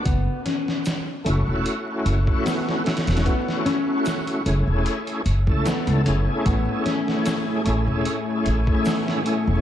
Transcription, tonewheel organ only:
X:1
M:4/4
L:1/16
Q:"Swing 16ths" 1/4=75
K:F#m
V:1 name="Tonewheel organ"
z6 [A,CEF]8 [A,CEF]2- | [A,CEF]6 [A,CEG]4 z [A,CEA]3 [A,CEG]2- | [A,CEG]6 [A,CEG]8 [A,CEG]2 |]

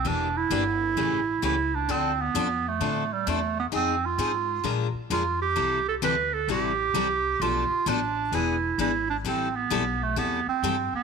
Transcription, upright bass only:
X:1
M:4/4
L:1/8
Q:"Swing" 1/4=130
K:Am
V:1 name="Upright bass" clef=bass
E,,,2 G,,,2 A,,,2 ^C,,2 | D,,2 F,,2 A,,2 E,,2 | F,,2 _A,,2 _B,, z F,,2 | C,,2 D,,2 A,,,2 C,,2 |
B,,, z A,,,2 E,,,2 ^G,,,2 | A,,,2 B,,,2 E,, z G,, z |]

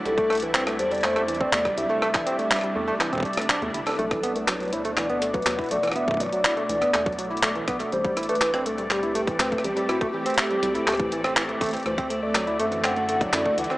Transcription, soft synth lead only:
X:1
M:4/4
L:1/16
Q:1/4=122
K:Ador
V:1 name="Soft synth lead"
A3 B3 c d c3 d3 e2- | e12 z4 | A3 B3 c2 d3 B3 d3/2 f/2 | e2 d12 z2 |
c3 B3 A2 G3 B3 G2 | F2 G12 z2 | c3 d3 e2 f3 d3 f2 |]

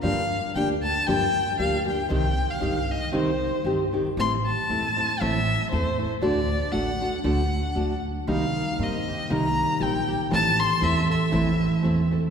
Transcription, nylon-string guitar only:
X:1
M:2/4
L:1/8
Q:"Swing" 1/4=117
K:Gm
V:1 name="Nylon-string guitar"
[G,,D,F,B,DG] z [F,B,DG] z | [G,,D,F,B,DG] z [F,B,DG] [F,B,DG] | [C,E,CEG] z [E,CEG] z | [C,E,CEG] z [E,CEG] [E,CEG] |
[A,,=E,A,C=EA] z [A,CEA] [A,CEA] | [A,,=E,A,C=EA] z [A,CEA] [A,CEA] | [D,A,D^FA] z [A,DFA] [A,DFA] | [D,A,D^FA] z [A,DFA] z |
[C,G,B,EB] z [G,B,EB] z | [C,G,B,EB] z [G,B,EB] z | [A,,=E,A,C=EA] z [A,CEA] z | [A,,=E,A,C=EA] z [A,CEA] [A,CEA] |]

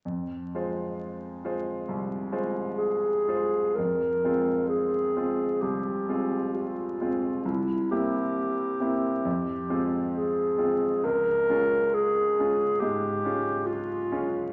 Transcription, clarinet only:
X:1
M:4/4
L:1/8
Q:1/4=66
K:Fm
V:1 name="Clarinet"
z6 A2 | B2 A2 G2 F2 | =E G4 z A2 | B2 A2 G2 F2 |]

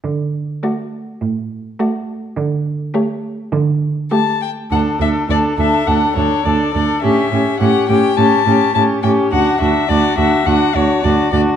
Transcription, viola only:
X:1
M:4/4
L:1/8
Q:1/4=104
K:D
V:1 name="Viola"
z2 A,2 z2 A,2 | z2 A,2 z2 A,2 | D D D D D D D D | C C C C C C C C |
D D D D D D D D |]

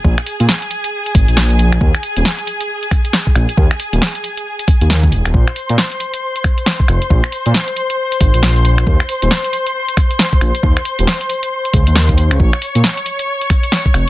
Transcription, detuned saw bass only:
X:1
M:4/4
L:1/16
Q:"Swing 16ths" 1/4=136
K:Bbm
V:1 name="Detuned saw bass" clef=bass
B,,, z2 B,, z6 A,,, B,,,4- B,,, | E,, z2 E,,, z8 z2 B,,, z | E,, z2 E,,, z6 z E,,3 E,,, E,,, | B,,, z2 B,, z8 z2 F,,, z |
B,,, z2 B,, z6 A,,, B,,,4- B,,, | E,, z2 E,,, z8 z2 B,,, z | E,, z2 E,,, z6 D,, E,,4 D,, | B,,, z2 B,, z8 z2 F,,, z |]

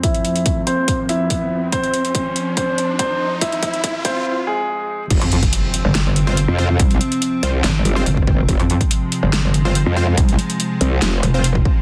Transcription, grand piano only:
X:1
M:4/4
L:1/8
Q:1/4=142
K:Fm
V:1 name="Grand piano"
[=E=e]3 [Cc] z [Ee]3 | [Cc]4 [Cc] z [Cc] z | [=E=e]3 [Cc] z [A,A]3 | z8 |
z8 | z8 | z8 |]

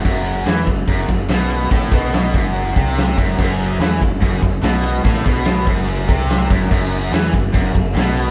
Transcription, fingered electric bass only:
X:1
M:4/4
L:1/8
Q:1/4=144
K:F#m
V:1 name="Fingered electric bass" clef=bass
F,,,2 E,, F,,, F,,, F,,, B,,,2 | A,,, B,,,2 F,,,2 ^B,,,2 F,,, | F,,,2 E,, F,,, F,,, F,,, B,,,2 | A,,, B,,,2 F,,,2 ^B,,,2 F,,, |
F,,,2 E,, F,,, F,,, F,,, B,,,2 |]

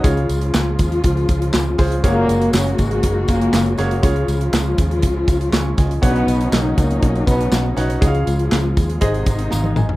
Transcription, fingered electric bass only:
X:1
M:4/4
L:1/8
Q:1/4=120
K:Db
V:1 name="Fingered electric bass" clef=bass
D,, D,, D,, E,, D,, D,, D,, D,, | G,,, G,,, G,,, A,,, G,,, G,,, G,,, G,,, | D,, D,, D,, E,, D,, D,, D,, D,, | _C,, C,, C,, D,, C,, C,, C,, C,, |
D,, D,, D,, E,, A,,, A,,, A,,, A,,, |]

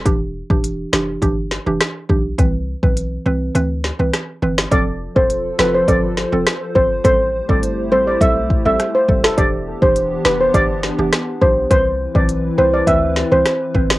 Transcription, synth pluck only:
X:1
M:4/4
L:1/16
Q:1/4=103
K:C
V:1 name="Synth pluck"
[E,DG] z2 [E,DG]3 [E,DG]2 [E,DG] z2 [E,DG] z2 [E,DG] z | [E,CB] z2 [E,CB]3 [E,CB]2 [E,CB] z2 [E,CB] z2 [E,CB] z | [F,CA] z2 [F,CA]3 [F,CA]2 [F,CA] z2 [F,CA] z2 [F,CA] z | [G,CA] z2 [G,CA]3 [G,CA]2 [G,CA] z2 [G,CA] z2 [G,CA] z |
[E,DG] z2 [E,DG]3 [E,DG]2 [E,DG] z2 [E,DG] z2 [E,DG] z | [E,CB] z2 [E,CB]3 [E,CB]2 [E,CB] z2 [E,CB] z2 [E,CB] z |]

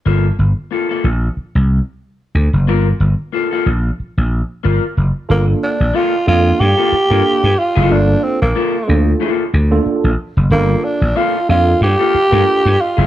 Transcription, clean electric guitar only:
X:1
M:4/4
L:1/16
Q:"Swing 16ths" 1/4=92
K:Gm
V:1 name="Clean electric guitar"
[B,FA] z3 [B,FA] [B,FA] z8 z2 | [B,FB] z3 [B,FA] [B,FA] z6 [B,FB] z3 | z4 [B,FA] z4 [B,FA] z [B,FB] z3 [B,FA] | z4 [B,FA] z3 [B,FA] z6 z |
z4 [B,FA] z4 [B,FA] z [B,FB] z3 [B,FA] |]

